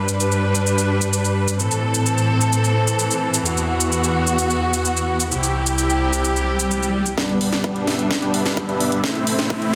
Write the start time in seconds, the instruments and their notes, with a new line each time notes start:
Already playing: string section G2 G3 D4 B4
0.09 shaker
0.20 shaker
0.32 shaker
0.55 shaker
0.67 shaker
0.78 shaker
1.01 shaker
1.13 shaker
1.25 shaker
1.48 shaker
1.59 string section A2 E3 C4 A4, shaker
1.71 shaker
1.94 shaker
2.06 shaker
2.18 shaker
2.41 shaker
2.53 shaker
2.64 shaker
2.88 shaker
2.99 shaker
3.11 shaker
3.34 shaker
3.46 string section E2 B3 F#4, shaker
3.57 shaker
3.81 shaker
3.92 shaker
4.04 shaker
4.27 shaker
4.39 shaker
4.50 shaker
4.74 shaker
4.85 shaker
4.97 shaker
5.20 shaker
5.31 string section C2 C3 E4 G4, shaker
5.43 shaker
5.67 shaker
5.78 shaker
5.90 shaker
6.13 shaker
6.25 swell, shaker
6.36 shaker
6.60 shaker
6.71 shaker
6.83 shaker
7.06 shaker
7.17 detuned saw bass G1, string section G3 B3 D4, supersaw synth G3 B3 D4 B4 D5, kick, snare, closed hi-hat, riser
7.29 closed hi-hat
7.41 open hi-hat
7.52 detuned saw bass G1, supersaw synth G3 B3 D4 B4 D5, snare, closed hi-hat
7.64 kick, closed hi-hat
7.76 closed hi-hat
7.87 detuned saw bass G1, supersaw synth G3 B3 D4 B4 E5, snare, open hi-hat
7.99 closed hi-hat
8.11 kick, snare, closed hi-hat
8.22 detuned saw bass G1, supersaw synth G3 B3 D4 B4 G5, closed hi-hat
8.34 detuned saw bass G1, supersaw synth G3 B3 D4 B4 E5, open hi-hat
8.45 detuned saw bass G1, supersaw synth G3 B3 D4 B4 E5, snare, closed hi-hat
8.57 kick, closed hi-hat
8.69 detuned saw bass G2, supersaw synth G3 B3 D4 B4 E5, closed hi-hat
8.80 open hi-hat
8.92 closed hi-hat
9.04 detuned saw bass A1, supersaw synth A3 C4 E4 C5 E5, string section A3 C4 E4, kick, snare, closed hi-hat
9.15 closed hi-hat
9.27 open hi-hat
9.39 detuned saw bass A1, supersaw synth A3 C4 E4 C5 E5, snare, closed hi-hat
9.50 kick, closed hi-hat
9.62 closed hi-hat